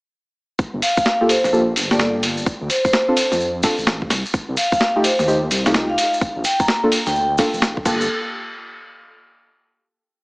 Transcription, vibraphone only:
0, 0, Header, 1, 2, 480
1, 0, Start_track
1, 0, Key_signature, -2, "minor"
1, 0, Tempo, 468750
1, 604, Time_signature, 4, 2, 24, 8
1, 10481, End_track
2, 0, Start_track
2, 0, Title_t, "Vibraphone"
2, 0, Program_c, 0, 11
2, 843, Note_on_c, 0, 77, 81
2, 966, Note_off_c, 0, 77, 0
2, 996, Note_on_c, 0, 77, 78
2, 1052, Note_off_c, 0, 77, 0
2, 1086, Note_on_c, 0, 77, 67
2, 1183, Note_off_c, 0, 77, 0
2, 1323, Note_on_c, 0, 72, 84
2, 1422, Note_off_c, 0, 72, 0
2, 1476, Note_on_c, 0, 72, 66
2, 1532, Note_off_c, 0, 72, 0
2, 1957, Note_on_c, 0, 74, 87
2, 2164, Note_off_c, 0, 74, 0
2, 2764, Note_on_c, 0, 72, 83
2, 2887, Note_off_c, 0, 72, 0
2, 2916, Note_on_c, 0, 72, 82
2, 3575, Note_off_c, 0, 72, 0
2, 4683, Note_on_c, 0, 77, 86
2, 4806, Note_off_c, 0, 77, 0
2, 4838, Note_on_c, 0, 77, 82
2, 4893, Note_off_c, 0, 77, 0
2, 4924, Note_on_c, 0, 77, 72
2, 5022, Note_off_c, 0, 77, 0
2, 5163, Note_on_c, 0, 72, 85
2, 5262, Note_off_c, 0, 72, 0
2, 5316, Note_on_c, 0, 72, 71
2, 5372, Note_off_c, 0, 72, 0
2, 6037, Note_on_c, 0, 77, 81
2, 6093, Note_off_c, 0, 77, 0
2, 6123, Note_on_c, 0, 77, 71
2, 6222, Note_off_c, 0, 77, 0
2, 6603, Note_on_c, 0, 79, 86
2, 6726, Note_off_c, 0, 79, 0
2, 6757, Note_on_c, 0, 82, 89
2, 6964, Note_off_c, 0, 82, 0
2, 7237, Note_on_c, 0, 79, 85
2, 7293, Note_off_c, 0, 79, 0
2, 7324, Note_on_c, 0, 79, 75
2, 7422, Note_off_c, 0, 79, 0
2, 10481, End_track
0, 0, End_of_file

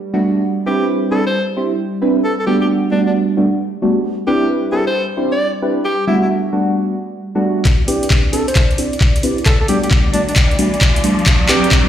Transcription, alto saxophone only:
0, 0, Header, 1, 2, 480
1, 0, Start_track
1, 0, Tempo, 451128
1, 464, Time_signature, 4, 2, 24, 8
1, 12647, End_track
2, 0, Start_track
2, 0, Title_t, "Alto saxophone"
2, 0, Program_c, 0, 65
2, 706, Note_on_c, 0, 67, 82
2, 915, Note_off_c, 0, 67, 0
2, 1186, Note_on_c, 0, 69, 89
2, 1313, Note_off_c, 0, 69, 0
2, 1345, Note_on_c, 0, 72, 83
2, 1523, Note_off_c, 0, 72, 0
2, 2385, Note_on_c, 0, 69, 83
2, 2487, Note_off_c, 0, 69, 0
2, 2545, Note_on_c, 0, 69, 72
2, 2596, Note_off_c, 0, 69, 0
2, 2625, Note_on_c, 0, 67, 81
2, 2727, Note_off_c, 0, 67, 0
2, 2783, Note_on_c, 0, 67, 71
2, 2835, Note_off_c, 0, 67, 0
2, 3103, Note_on_c, 0, 62, 83
2, 3206, Note_off_c, 0, 62, 0
2, 3263, Note_on_c, 0, 62, 71
2, 3315, Note_off_c, 0, 62, 0
2, 4543, Note_on_c, 0, 67, 83
2, 4753, Note_off_c, 0, 67, 0
2, 5022, Note_on_c, 0, 69, 86
2, 5151, Note_off_c, 0, 69, 0
2, 5182, Note_on_c, 0, 72, 88
2, 5362, Note_off_c, 0, 72, 0
2, 5663, Note_on_c, 0, 74, 91
2, 5842, Note_off_c, 0, 74, 0
2, 6222, Note_on_c, 0, 67, 88
2, 6433, Note_off_c, 0, 67, 0
2, 6463, Note_on_c, 0, 64, 80
2, 6566, Note_off_c, 0, 64, 0
2, 6621, Note_on_c, 0, 64, 71
2, 6674, Note_off_c, 0, 64, 0
2, 8380, Note_on_c, 0, 67, 86
2, 8592, Note_off_c, 0, 67, 0
2, 8862, Note_on_c, 0, 69, 90
2, 8991, Note_off_c, 0, 69, 0
2, 9022, Note_on_c, 0, 72, 90
2, 9202, Note_off_c, 0, 72, 0
2, 10062, Note_on_c, 0, 69, 84
2, 10165, Note_off_c, 0, 69, 0
2, 10224, Note_on_c, 0, 69, 78
2, 10275, Note_off_c, 0, 69, 0
2, 10304, Note_on_c, 0, 67, 80
2, 10406, Note_off_c, 0, 67, 0
2, 10463, Note_on_c, 0, 67, 75
2, 10515, Note_off_c, 0, 67, 0
2, 10782, Note_on_c, 0, 62, 85
2, 10885, Note_off_c, 0, 62, 0
2, 10944, Note_on_c, 0, 62, 73
2, 10995, Note_off_c, 0, 62, 0
2, 12223, Note_on_c, 0, 67, 89
2, 12433, Note_off_c, 0, 67, 0
2, 12647, End_track
0, 0, End_of_file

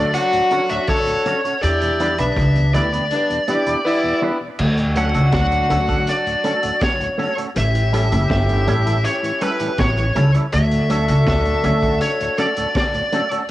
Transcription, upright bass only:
0, 0, Header, 1, 2, 480
1, 0, Start_track
1, 0, Key_signature, 2, "major"
1, 0, Tempo, 741656
1, 1052, Time_signature, 4, 2, 24, 8
1, 8742, End_track
2, 0, Start_track
2, 0, Title_t, "Upright bass"
2, 0, Program_c, 0, 32
2, 0, Note_on_c, 0, 38, 93
2, 80, Note_off_c, 0, 38, 0
2, 1056, Note_on_c, 0, 40, 92
2, 1398, Note_off_c, 0, 40, 0
2, 1417, Note_on_c, 0, 35, 80
2, 1528, Note_off_c, 0, 35, 0
2, 1533, Note_on_c, 0, 37, 91
2, 1761, Note_off_c, 0, 37, 0
2, 1777, Note_on_c, 0, 38, 81
2, 2003, Note_off_c, 0, 38, 0
2, 2974, Note_on_c, 0, 38, 98
2, 3317, Note_off_c, 0, 38, 0
2, 3337, Note_on_c, 0, 37, 82
2, 3448, Note_off_c, 0, 37, 0
2, 3451, Note_on_c, 0, 38, 98
2, 3680, Note_off_c, 0, 38, 0
2, 3696, Note_on_c, 0, 38, 91
2, 3922, Note_off_c, 0, 38, 0
2, 4896, Note_on_c, 0, 33, 97
2, 5237, Note_off_c, 0, 33, 0
2, 5258, Note_on_c, 0, 30, 93
2, 5368, Note_off_c, 0, 30, 0
2, 5373, Note_on_c, 0, 31, 88
2, 5601, Note_off_c, 0, 31, 0
2, 5616, Note_on_c, 0, 33, 99
2, 5842, Note_off_c, 0, 33, 0
2, 6334, Note_on_c, 0, 33, 101
2, 6561, Note_off_c, 0, 33, 0
2, 6576, Note_on_c, 0, 37, 89
2, 6689, Note_off_c, 0, 37, 0
2, 6818, Note_on_c, 0, 38, 108
2, 7158, Note_off_c, 0, 38, 0
2, 7179, Note_on_c, 0, 37, 97
2, 7288, Note_off_c, 0, 37, 0
2, 7293, Note_on_c, 0, 38, 91
2, 7520, Note_off_c, 0, 38, 0
2, 7538, Note_on_c, 0, 38, 92
2, 7762, Note_off_c, 0, 38, 0
2, 8742, End_track
0, 0, End_of_file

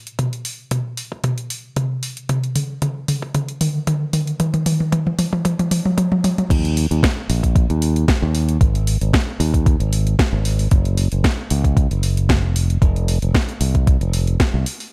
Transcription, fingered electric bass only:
0, 0, Header, 1, 2, 480
1, 0, Start_track
1, 0, Tempo, 526316
1, 173, Time_signature, 4, 2, 24, 8
1, 13613, End_track
2, 0, Start_track
2, 0, Title_t, "Fingered electric bass"
2, 0, Program_c, 0, 33
2, 5932, Note_on_c, 0, 39, 99
2, 6253, Note_off_c, 0, 39, 0
2, 6302, Note_on_c, 0, 39, 87
2, 6388, Note_off_c, 0, 39, 0
2, 6654, Note_on_c, 0, 34, 97
2, 6974, Note_off_c, 0, 34, 0
2, 7022, Note_on_c, 0, 39, 95
2, 7333, Note_off_c, 0, 39, 0
2, 7500, Note_on_c, 0, 39, 98
2, 7811, Note_off_c, 0, 39, 0
2, 7853, Note_on_c, 0, 32, 99
2, 8174, Note_off_c, 0, 32, 0
2, 8221, Note_on_c, 0, 32, 84
2, 8308, Note_off_c, 0, 32, 0
2, 8571, Note_on_c, 0, 39, 98
2, 8893, Note_off_c, 0, 39, 0
2, 8937, Note_on_c, 0, 32, 96
2, 9250, Note_off_c, 0, 32, 0
2, 9418, Note_on_c, 0, 32, 99
2, 9730, Note_off_c, 0, 32, 0
2, 9774, Note_on_c, 0, 30, 100
2, 10094, Note_off_c, 0, 30, 0
2, 10146, Note_on_c, 0, 30, 83
2, 10230, Note_off_c, 0, 30, 0
2, 10496, Note_on_c, 0, 37, 100
2, 10815, Note_off_c, 0, 37, 0
2, 10864, Note_on_c, 0, 30, 95
2, 11340, Note_off_c, 0, 30, 0
2, 11340, Note_on_c, 0, 29, 97
2, 11652, Note_off_c, 0, 29, 0
2, 11692, Note_on_c, 0, 29, 99
2, 12013, Note_off_c, 0, 29, 0
2, 12061, Note_on_c, 0, 29, 82
2, 12148, Note_off_c, 0, 29, 0
2, 12409, Note_on_c, 0, 36, 100
2, 12732, Note_off_c, 0, 36, 0
2, 12777, Note_on_c, 0, 29, 95
2, 13090, Note_off_c, 0, 29, 0
2, 13260, Note_on_c, 0, 36, 91
2, 13347, Note_off_c, 0, 36, 0
2, 13613, End_track
0, 0, End_of_file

